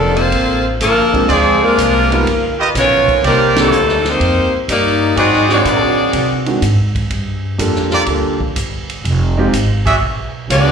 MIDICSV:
0, 0, Header, 1, 8, 480
1, 0, Start_track
1, 0, Key_signature, -2, "minor"
1, 0, Tempo, 484653
1, 1281, Time_signature, 4, 2, 24, 8
1, 10614, End_track
2, 0, Start_track
2, 0, Title_t, "Trumpet section"
2, 0, Program_c, 0, 61
2, 1271, Note_on_c, 0, 74, 91
2, 1272, Note_on_c, 0, 68, 77
2, 1275, Note_on_c, 0, 65, 88
2, 1277, Note_on_c, 0, 72, 76
2, 2018, Note_off_c, 0, 68, 0
2, 2018, Note_off_c, 0, 74, 0
2, 2020, Note_off_c, 0, 65, 0
2, 2021, Note_off_c, 0, 72, 0
2, 2569, Note_on_c, 0, 71, 85
2, 2571, Note_on_c, 0, 75, 90
2, 2573, Note_on_c, 0, 65, 84
2, 2574, Note_on_c, 0, 67, 87
2, 2671, Note_off_c, 0, 71, 0
2, 2672, Note_off_c, 0, 75, 0
2, 2673, Note_off_c, 0, 65, 0
2, 2674, Note_off_c, 0, 67, 0
2, 3200, Note_on_c, 0, 60, 87
2, 3200, Note_on_c, 0, 72, 83
2, 3201, Note_on_c, 0, 67, 90
2, 3204, Note_on_c, 0, 74, 98
2, 3942, Note_off_c, 0, 60, 0
2, 3942, Note_off_c, 0, 67, 0
2, 3942, Note_off_c, 0, 72, 0
2, 3944, Note_off_c, 0, 74, 0
2, 5113, Note_on_c, 0, 74, 97
2, 5115, Note_on_c, 0, 68, 85
2, 5118, Note_on_c, 0, 66, 91
2, 5118, Note_on_c, 0, 72, 76
2, 5858, Note_off_c, 0, 74, 0
2, 5859, Note_off_c, 0, 68, 0
2, 5860, Note_off_c, 0, 66, 0
2, 5860, Note_off_c, 0, 72, 0
2, 7847, Note_on_c, 0, 70, 83
2, 7848, Note_on_c, 0, 65, 91
2, 7849, Note_on_c, 0, 67, 80
2, 7850, Note_on_c, 0, 74, 100
2, 7949, Note_off_c, 0, 70, 0
2, 7950, Note_off_c, 0, 65, 0
2, 7950, Note_off_c, 0, 67, 0
2, 7951, Note_off_c, 0, 74, 0
2, 9765, Note_on_c, 0, 68, 78
2, 9765, Note_on_c, 0, 76, 96
2, 9767, Note_on_c, 0, 74, 86
2, 9769, Note_on_c, 0, 66, 88
2, 9868, Note_off_c, 0, 68, 0
2, 9868, Note_off_c, 0, 76, 0
2, 9869, Note_off_c, 0, 74, 0
2, 9870, Note_off_c, 0, 66, 0
2, 10614, End_track
3, 0, Start_track
3, 0, Title_t, "Saxophone section"
3, 0, Program_c, 1, 65
3, 0, Note_on_c, 1, 53, 82
3, 0, Note_on_c, 1, 58, 85
3, 0, Note_on_c, 1, 62, 77
3, 0, Note_on_c, 1, 69, 86
3, 160, Note_off_c, 1, 69, 0
3, 162, Note_off_c, 1, 58, 0
3, 172, Note_on_c, 1, 69, 74
3, 174, Note_on_c, 1, 58, 75
3, 174, Note_on_c, 1, 65, 78
3, 174, Note_on_c, 1, 72, 88
3, 177, Note_off_c, 1, 62, 0
3, 179, Note_off_c, 1, 53, 0
3, 650, Note_off_c, 1, 69, 0
3, 651, Note_off_c, 1, 58, 0
3, 651, Note_off_c, 1, 65, 0
3, 651, Note_off_c, 1, 72, 0
3, 808, Note_on_c, 1, 70, 97
3, 809, Note_on_c, 1, 62, 85
3, 810, Note_on_c, 1, 53, 81
3, 817, Note_on_c, 1, 69, 81
3, 1251, Note_off_c, 1, 62, 0
3, 1251, Note_off_c, 1, 70, 0
3, 1252, Note_off_c, 1, 53, 0
3, 1255, Note_off_c, 1, 69, 0
3, 1296, Note_on_c, 1, 53, 77
3, 1298, Note_on_c, 1, 68, 86
3, 1299, Note_on_c, 1, 62, 75
3, 1300, Note_on_c, 1, 60, 75
3, 1594, Note_off_c, 1, 53, 0
3, 1595, Note_off_c, 1, 62, 0
3, 1595, Note_off_c, 1, 68, 0
3, 1596, Note_off_c, 1, 60, 0
3, 1609, Note_on_c, 1, 70, 96
3, 1612, Note_on_c, 1, 56, 83
3, 1614, Note_on_c, 1, 62, 81
3, 1616, Note_on_c, 1, 65, 81
3, 2241, Note_off_c, 1, 56, 0
3, 2242, Note_off_c, 1, 62, 0
3, 2568, Note_off_c, 1, 70, 0
3, 2571, Note_off_c, 1, 65, 0
3, 2748, Note_on_c, 1, 59, 87
3, 2752, Note_on_c, 1, 73, 104
3, 2753, Note_on_c, 1, 65, 89
3, 2754, Note_on_c, 1, 70, 86
3, 3181, Note_off_c, 1, 59, 0
3, 3183, Note_off_c, 1, 65, 0
3, 3183, Note_off_c, 1, 73, 0
3, 3184, Note_off_c, 1, 70, 0
3, 3237, Note_on_c, 1, 70, 96
3, 3241, Note_on_c, 1, 62, 80
3, 3244, Note_on_c, 1, 55, 75
3, 3245, Note_on_c, 1, 63, 82
3, 3524, Note_off_c, 1, 70, 0
3, 3527, Note_off_c, 1, 62, 0
3, 3528, Note_off_c, 1, 55, 0
3, 3529, Note_off_c, 1, 63, 0
3, 3561, Note_on_c, 1, 62, 82
3, 3564, Note_on_c, 1, 63, 84
3, 3564, Note_on_c, 1, 69, 90
3, 3567, Note_on_c, 1, 55, 80
3, 4024, Note_off_c, 1, 62, 0
3, 4025, Note_off_c, 1, 63, 0
3, 4025, Note_off_c, 1, 69, 0
3, 4026, Note_off_c, 1, 55, 0
3, 4042, Note_on_c, 1, 63, 84
3, 4046, Note_on_c, 1, 72, 91
3, 4049, Note_on_c, 1, 58, 79
3, 4050, Note_on_c, 1, 67, 78
3, 4504, Note_off_c, 1, 63, 0
3, 4506, Note_off_c, 1, 72, 0
3, 4508, Note_off_c, 1, 58, 0
3, 4508, Note_off_c, 1, 67, 0
3, 4651, Note_on_c, 1, 67, 82
3, 4655, Note_on_c, 1, 74, 90
3, 4657, Note_on_c, 1, 58, 83
3, 4660, Note_on_c, 1, 63, 79
3, 5091, Note_off_c, 1, 67, 0
3, 5093, Note_off_c, 1, 74, 0
3, 5094, Note_off_c, 1, 58, 0
3, 5096, Note_off_c, 1, 63, 0
3, 5128, Note_on_c, 1, 68, 84
3, 5130, Note_on_c, 1, 60, 86
3, 5132, Note_on_c, 1, 66, 85
3, 5133, Note_on_c, 1, 75, 99
3, 5450, Note_off_c, 1, 60, 0
3, 5450, Note_off_c, 1, 66, 0
3, 5451, Note_off_c, 1, 68, 0
3, 5453, Note_off_c, 1, 75, 0
3, 5461, Note_on_c, 1, 60, 81
3, 5462, Note_on_c, 1, 66, 83
3, 5466, Note_on_c, 1, 68, 82
3, 5468, Note_on_c, 1, 74, 99
3, 6374, Note_off_c, 1, 60, 0
3, 6374, Note_off_c, 1, 66, 0
3, 6376, Note_off_c, 1, 68, 0
3, 6377, Note_off_c, 1, 74, 0
3, 10402, Note_on_c, 1, 74, 99
3, 10409, Note_on_c, 1, 59, 87
3, 10409, Note_on_c, 1, 66, 93
3, 10413, Note_on_c, 1, 68, 97
3, 10614, Note_off_c, 1, 59, 0
3, 10614, Note_off_c, 1, 66, 0
3, 10614, Note_off_c, 1, 68, 0
3, 10614, Note_off_c, 1, 74, 0
3, 10614, End_track
4, 0, Start_track
4, 0, Title_t, "Grand piano"
4, 0, Program_c, 2, 0
4, 1119, Note_on_c, 2, 56, 65
4, 1123, Note_on_c, 2, 60, 64
4, 1130, Note_on_c, 2, 62, 58
4, 1131, Note_on_c, 2, 65, 58
4, 1136, Note_on_c, 2, 68, 65
4, 1260, Note_off_c, 2, 56, 0
4, 1262, Note_off_c, 2, 60, 0
4, 1266, Note_off_c, 2, 62, 0
4, 1266, Note_off_c, 2, 65, 0
4, 1269, Note_off_c, 2, 68, 0
4, 2085, Note_on_c, 2, 55, 70
4, 2094, Note_on_c, 2, 59, 70
4, 2096, Note_on_c, 2, 63, 67
4, 2103, Note_on_c, 2, 65, 66
4, 2104, Note_on_c, 2, 70, 84
4, 2223, Note_off_c, 2, 55, 0
4, 2227, Note_off_c, 2, 59, 0
4, 2228, Note_off_c, 2, 63, 0
4, 2232, Note_off_c, 2, 65, 0
4, 2233, Note_off_c, 2, 70, 0
4, 3516, Note_on_c, 2, 51, 64
4, 3526, Note_on_c, 2, 58, 67
4, 3527, Note_on_c, 2, 60, 63
4, 3535, Note_on_c, 2, 62, 65
4, 3539, Note_on_c, 2, 67, 74
4, 3658, Note_off_c, 2, 51, 0
4, 3663, Note_off_c, 2, 58, 0
4, 3663, Note_off_c, 2, 60, 0
4, 3667, Note_off_c, 2, 62, 0
4, 3670, Note_off_c, 2, 67, 0
4, 6397, Note_on_c, 2, 51, 57
4, 6401, Note_on_c, 2, 56, 52
4, 6404, Note_on_c, 2, 62, 49
4, 6405, Note_on_c, 2, 60, 51
4, 6412, Note_on_c, 2, 66, 65
4, 6538, Note_off_c, 2, 51, 0
4, 6540, Note_off_c, 2, 56, 0
4, 6541, Note_off_c, 2, 62, 0
4, 6542, Note_off_c, 2, 60, 0
4, 6545, Note_off_c, 2, 66, 0
4, 7509, Note_on_c, 2, 55, 61
4, 7510, Note_on_c, 2, 58, 57
4, 7511, Note_on_c, 2, 62, 56
4, 7518, Note_on_c, 2, 65, 58
4, 7526, Note_on_c, 2, 69, 65
4, 7966, Note_off_c, 2, 55, 0
4, 7972, Note_off_c, 2, 58, 0
4, 7979, Note_off_c, 2, 62, 0
4, 7981, Note_on_c, 2, 55, 51
4, 7982, Note_off_c, 2, 65, 0
4, 7987, Note_off_c, 2, 69, 0
4, 7987, Note_on_c, 2, 58, 47
4, 7996, Note_on_c, 2, 65, 54
4, 7997, Note_on_c, 2, 62, 54
4, 8003, Note_on_c, 2, 69, 62
4, 8284, Note_off_c, 2, 55, 0
4, 8288, Note_off_c, 2, 58, 0
4, 8292, Note_off_c, 2, 65, 0
4, 8293, Note_off_c, 2, 62, 0
4, 8296, Note_off_c, 2, 69, 0
4, 9284, Note_on_c, 2, 56, 84
4, 9292, Note_on_c, 2, 60, 79
4, 9295, Note_on_c, 2, 63, 74
4, 9296, Note_on_c, 2, 65, 78
4, 9301, Note_on_c, 2, 67, 90
4, 9422, Note_off_c, 2, 56, 0
4, 9425, Note_off_c, 2, 60, 0
4, 9427, Note_off_c, 2, 63, 0
4, 9427, Note_off_c, 2, 65, 0
4, 9430, Note_off_c, 2, 67, 0
4, 10614, End_track
5, 0, Start_track
5, 0, Title_t, "Trombone section"
5, 0, Program_c, 3, 61
5, 0, Note_on_c, 3, 50, 78
5, 0, Note_on_c, 3, 53, 77
5, 0, Note_on_c, 3, 69, 77
5, 138, Note_off_c, 3, 53, 0
5, 143, Note_off_c, 3, 50, 0
5, 150, Note_on_c, 3, 53, 69
5, 152, Note_on_c, 3, 60, 75
5, 155, Note_on_c, 3, 50, 66
5, 168, Note_off_c, 3, 69, 0
5, 639, Note_off_c, 3, 53, 0
5, 640, Note_off_c, 3, 60, 0
5, 642, Note_off_c, 3, 50, 0
5, 782, Note_on_c, 3, 50, 87
5, 784, Note_on_c, 3, 58, 96
5, 785, Note_on_c, 3, 53, 92
5, 1237, Note_off_c, 3, 50, 0
5, 1238, Note_off_c, 3, 53, 0
5, 1238, Note_off_c, 3, 58, 0
5, 1254, Note_on_c, 3, 48, 78
5, 1254, Note_on_c, 3, 56, 81
5, 1256, Note_on_c, 3, 53, 80
5, 1571, Note_off_c, 3, 48, 0
5, 1571, Note_off_c, 3, 56, 0
5, 1572, Note_off_c, 3, 53, 0
5, 1584, Note_on_c, 3, 58, 91
5, 1585, Note_on_c, 3, 53, 84
5, 1587, Note_on_c, 3, 48, 80
5, 2229, Note_off_c, 3, 48, 0
5, 2556, Note_off_c, 3, 53, 0
5, 2556, Note_off_c, 3, 58, 0
5, 2721, Note_on_c, 3, 61, 87
5, 2729, Note_on_c, 3, 53, 93
5, 2730, Note_on_c, 3, 51, 92
5, 3166, Note_off_c, 3, 61, 0
5, 3171, Note_off_c, 3, 51, 0
5, 3171, Note_off_c, 3, 53, 0
5, 3198, Note_on_c, 3, 55, 87
5, 3204, Note_on_c, 3, 58, 86
5, 3207, Note_on_c, 3, 51, 85
5, 3504, Note_off_c, 3, 55, 0
5, 3507, Note_off_c, 3, 58, 0
5, 3508, Note_off_c, 3, 51, 0
5, 3530, Note_on_c, 3, 57, 81
5, 3532, Note_on_c, 3, 46, 82
5, 3537, Note_on_c, 3, 51, 78
5, 3999, Note_off_c, 3, 51, 0
5, 4008, Note_off_c, 3, 57, 0
5, 4009, Note_off_c, 3, 46, 0
5, 4010, Note_on_c, 3, 51, 72
5, 4013, Note_on_c, 3, 55, 73
5, 4019, Note_on_c, 3, 60, 74
5, 4488, Note_off_c, 3, 51, 0
5, 4490, Note_off_c, 3, 55, 0
5, 4493, Note_off_c, 3, 60, 0
5, 4636, Note_on_c, 3, 63, 79
5, 4638, Note_on_c, 3, 58, 82
5, 4639, Note_on_c, 3, 55, 90
5, 5083, Note_off_c, 3, 63, 0
5, 5084, Note_off_c, 3, 58, 0
5, 5085, Note_off_c, 3, 55, 0
5, 5115, Note_on_c, 3, 63, 90
5, 5118, Note_on_c, 3, 54, 85
5, 5119, Note_on_c, 3, 60, 91
5, 5427, Note_off_c, 3, 54, 0
5, 5435, Note_on_c, 3, 62, 81
5, 5439, Note_on_c, 3, 54, 87
5, 5440, Note_on_c, 3, 51, 83
5, 5444, Note_off_c, 3, 63, 0
5, 5446, Note_off_c, 3, 60, 0
5, 6361, Note_off_c, 3, 62, 0
5, 6363, Note_off_c, 3, 51, 0
5, 6363, Note_off_c, 3, 54, 0
5, 10380, Note_on_c, 3, 56, 93
5, 10380, Note_on_c, 3, 62, 93
5, 10382, Note_on_c, 3, 59, 92
5, 10614, Note_off_c, 3, 56, 0
5, 10614, Note_off_c, 3, 59, 0
5, 10614, Note_off_c, 3, 62, 0
5, 10614, End_track
6, 0, Start_track
6, 0, Title_t, "Upright bass"
6, 0, Program_c, 4, 32
6, 0, Note_on_c, 4, 29, 77
6, 303, Note_off_c, 4, 29, 0
6, 316, Note_on_c, 4, 33, 79
6, 784, Note_off_c, 4, 33, 0
6, 796, Note_on_c, 4, 31, 85
6, 1263, Note_off_c, 4, 31, 0
6, 1278, Note_on_c, 4, 38, 86
6, 1584, Note_off_c, 4, 38, 0
6, 1760, Note_on_c, 4, 36, 81
6, 2225, Note_off_c, 4, 36, 0
6, 2242, Note_on_c, 4, 31, 76
6, 2706, Note_off_c, 4, 31, 0
6, 2721, Note_on_c, 4, 35, 91
6, 3025, Note_off_c, 4, 35, 0
6, 3201, Note_on_c, 4, 36, 93
6, 3665, Note_off_c, 4, 36, 0
6, 3678, Note_on_c, 4, 38, 87
6, 4144, Note_off_c, 4, 38, 0
6, 4161, Note_on_c, 4, 41, 81
6, 4465, Note_off_c, 4, 41, 0
6, 4639, Note_on_c, 4, 43, 91
6, 5104, Note_off_c, 4, 43, 0
6, 5115, Note_on_c, 4, 44, 87
6, 5582, Note_off_c, 4, 44, 0
6, 5596, Note_on_c, 4, 46, 84
6, 6063, Note_off_c, 4, 46, 0
6, 6076, Note_on_c, 4, 48, 82
6, 6542, Note_off_c, 4, 48, 0
6, 6554, Note_on_c, 4, 44, 93
6, 7021, Note_off_c, 4, 44, 0
6, 7036, Note_on_c, 4, 43, 89
6, 7502, Note_off_c, 4, 43, 0
6, 7518, Note_on_c, 4, 41, 80
6, 7983, Note_off_c, 4, 41, 0
6, 7991, Note_on_c, 4, 38, 77
6, 8460, Note_off_c, 4, 38, 0
6, 8477, Note_on_c, 4, 31, 90
6, 8943, Note_off_c, 4, 31, 0
6, 8956, Note_on_c, 4, 29, 95
6, 9422, Note_off_c, 4, 29, 0
6, 9441, Note_on_c, 4, 32, 86
6, 9905, Note_off_c, 4, 32, 0
6, 9918, Note_on_c, 4, 35, 81
6, 10384, Note_off_c, 4, 35, 0
6, 10400, Note_on_c, 4, 37, 104
6, 10614, Note_off_c, 4, 37, 0
6, 10614, End_track
7, 0, Start_track
7, 0, Title_t, "Muted upright bass strokes"
7, 1599, Note_on_c, 9, 29, 39
7, 1698, Note_off_c, 9, 29, 0
7, 3052, Note_on_c, 9, 29, 39
7, 3151, Note_off_c, 9, 29, 0
7, 4487, Note_on_c, 9, 29, 38
7, 4586, Note_off_c, 9, 29, 0
7, 10614, End_track
8, 0, Start_track
8, 0, Title_t, "Drums"
8, 164, Note_on_c, 9, 51, 45
8, 263, Note_off_c, 9, 51, 0
8, 316, Note_on_c, 9, 36, 24
8, 318, Note_on_c, 9, 51, 61
8, 415, Note_off_c, 9, 36, 0
8, 417, Note_off_c, 9, 51, 0
8, 797, Note_on_c, 9, 36, 24
8, 798, Note_on_c, 9, 44, 64
8, 798, Note_on_c, 9, 51, 66
8, 896, Note_off_c, 9, 36, 0
8, 897, Note_off_c, 9, 44, 0
8, 897, Note_off_c, 9, 51, 0
8, 1127, Note_on_c, 9, 36, 57
8, 1132, Note_on_c, 9, 51, 47
8, 1226, Note_off_c, 9, 36, 0
8, 1231, Note_off_c, 9, 51, 0
8, 1280, Note_on_c, 9, 36, 18
8, 1284, Note_on_c, 9, 51, 58
8, 1379, Note_off_c, 9, 36, 0
8, 1383, Note_off_c, 9, 51, 0
8, 1761, Note_on_c, 9, 36, 28
8, 1767, Note_on_c, 9, 44, 68
8, 1767, Note_on_c, 9, 51, 73
8, 1860, Note_off_c, 9, 36, 0
8, 1866, Note_off_c, 9, 44, 0
8, 1866, Note_off_c, 9, 51, 0
8, 2098, Note_on_c, 9, 51, 48
8, 2197, Note_off_c, 9, 51, 0
8, 2242, Note_on_c, 9, 36, 27
8, 2248, Note_on_c, 9, 51, 59
8, 2341, Note_off_c, 9, 36, 0
8, 2347, Note_off_c, 9, 51, 0
8, 2722, Note_on_c, 9, 36, 30
8, 2723, Note_on_c, 9, 38, 39
8, 2725, Note_on_c, 9, 44, 62
8, 2725, Note_on_c, 9, 51, 70
8, 2821, Note_off_c, 9, 36, 0
8, 2822, Note_off_c, 9, 38, 0
8, 2824, Note_off_c, 9, 44, 0
8, 2824, Note_off_c, 9, 51, 0
8, 3051, Note_on_c, 9, 36, 60
8, 3057, Note_on_c, 9, 51, 49
8, 3150, Note_off_c, 9, 36, 0
8, 3156, Note_off_c, 9, 51, 0
8, 3203, Note_on_c, 9, 36, 17
8, 3210, Note_on_c, 9, 51, 57
8, 3302, Note_off_c, 9, 36, 0
8, 3310, Note_off_c, 9, 51, 0
8, 3528, Note_on_c, 9, 38, 87
8, 3530, Note_on_c, 9, 51, 66
8, 3627, Note_off_c, 9, 38, 0
8, 3629, Note_off_c, 9, 51, 0
8, 3682, Note_on_c, 9, 44, 58
8, 3781, Note_off_c, 9, 44, 0
8, 3847, Note_on_c, 9, 38, 31
8, 3946, Note_off_c, 9, 38, 0
8, 4006, Note_on_c, 9, 38, 43
8, 4017, Note_on_c, 9, 51, 50
8, 4105, Note_off_c, 9, 38, 0
8, 4116, Note_off_c, 9, 51, 0
8, 4161, Note_on_c, 9, 36, 25
8, 4168, Note_on_c, 9, 51, 58
8, 4260, Note_off_c, 9, 36, 0
8, 4267, Note_off_c, 9, 51, 0
8, 4639, Note_on_c, 9, 36, 20
8, 4642, Note_on_c, 9, 44, 54
8, 4642, Note_on_c, 9, 51, 76
8, 4738, Note_off_c, 9, 36, 0
8, 4742, Note_off_c, 9, 44, 0
8, 4742, Note_off_c, 9, 51, 0
8, 5117, Note_on_c, 9, 36, 25
8, 5123, Note_on_c, 9, 51, 61
8, 5216, Note_off_c, 9, 36, 0
8, 5222, Note_off_c, 9, 51, 0
8, 5279, Note_on_c, 9, 38, 28
8, 5378, Note_off_c, 9, 38, 0
8, 5437, Note_on_c, 9, 38, 47
8, 5537, Note_off_c, 9, 38, 0
8, 5596, Note_on_c, 9, 36, 22
8, 5599, Note_on_c, 9, 44, 69
8, 5599, Note_on_c, 9, 51, 67
8, 5695, Note_off_c, 9, 36, 0
8, 5698, Note_off_c, 9, 44, 0
8, 5698, Note_off_c, 9, 51, 0
8, 6072, Note_on_c, 9, 51, 69
8, 6073, Note_on_c, 9, 36, 25
8, 6171, Note_off_c, 9, 51, 0
8, 6172, Note_off_c, 9, 36, 0
8, 6400, Note_on_c, 9, 51, 46
8, 6499, Note_off_c, 9, 51, 0
8, 6555, Note_on_c, 9, 36, 20
8, 6558, Note_on_c, 9, 44, 60
8, 6558, Note_on_c, 9, 51, 72
8, 6654, Note_off_c, 9, 36, 0
8, 6657, Note_off_c, 9, 44, 0
8, 6657, Note_off_c, 9, 51, 0
8, 6884, Note_on_c, 9, 36, 46
8, 6888, Note_on_c, 9, 51, 50
8, 6983, Note_off_c, 9, 36, 0
8, 6987, Note_off_c, 9, 51, 0
8, 7036, Note_on_c, 9, 36, 23
8, 7037, Note_on_c, 9, 51, 57
8, 7135, Note_off_c, 9, 36, 0
8, 7136, Note_off_c, 9, 51, 0
8, 7517, Note_on_c, 9, 36, 26
8, 7519, Note_on_c, 9, 44, 57
8, 7519, Note_on_c, 9, 51, 72
8, 7616, Note_off_c, 9, 36, 0
8, 7618, Note_off_c, 9, 44, 0
8, 7618, Note_off_c, 9, 51, 0
8, 7678, Note_on_c, 9, 38, 30
8, 7777, Note_off_c, 9, 38, 0
8, 7827, Note_on_c, 9, 38, 41
8, 7843, Note_on_c, 9, 51, 41
8, 7926, Note_off_c, 9, 38, 0
8, 7942, Note_off_c, 9, 51, 0
8, 7987, Note_on_c, 9, 51, 68
8, 7992, Note_on_c, 9, 36, 26
8, 8086, Note_off_c, 9, 51, 0
8, 8091, Note_off_c, 9, 36, 0
8, 8323, Note_on_c, 9, 36, 51
8, 8422, Note_off_c, 9, 36, 0
8, 8477, Note_on_c, 9, 36, 27
8, 8478, Note_on_c, 9, 44, 60
8, 8478, Note_on_c, 9, 51, 69
8, 8576, Note_off_c, 9, 36, 0
8, 8577, Note_off_c, 9, 44, 0
8, 8577, Note_off_c, 9, 51, 0
8, 8810, Note_on_c, 9, 51, 53
8, 8909, Note_off_c, 9, 51, 0
8, 8958, Note_on_c, 9, 36, 22
8, 8965, Note_on_c, 9, 51, 63
8, 9057, Note_off_c, 9, 36, 0
8, 9064, Note_off_c, 9, 51, 0
8, 9439, Note_on_c, 9, 36, 20
8, 9443, Note_on_c, 9, 44, 57
8, 9443, Note_on_c, 9, 51, 78
8, 9538, Note_off_c, 9, 36, 0
8, 9542, Note_off_c, 9, 44, 0
8, 9542, Note_off_c, 9, 51, 0
8, 9767, Note_on_c, 9, 36, 63
8, 9771, Note_on_c, 9, 51, 69
8, 9866, Note_off_c, 9, 36, 0
8, 9870, Note_off_c, 9, 51, 0
8, 9919, Note_on_c, 9, 36, 25
8, 10018, Note_off_c, 9, 36, 0
8, 10397, Note_on_c, 9, 36, 22
8, 10402, Note_on_c, 9, 44, 60
8, 10402, Note_on_c, 9, 51, 79
8, 10496, Note_off_c, 9, 36, 0
8, 10501, Note_off_c, 9, 44, 0
8, 10501, Note_off_c, 9, 51, 0
8, 10614, End_track
0, 0, End_of_file